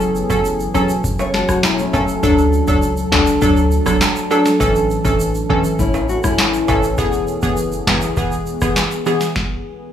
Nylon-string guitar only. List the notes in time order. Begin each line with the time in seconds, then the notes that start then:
1.19 A4 C#5
1.34 F#4 A4
1.49 F#4
1.64 C#4 E4
1.79 A3 C#4
5.80 C#4 E4
6.09 F#4
6.24 C#4 E4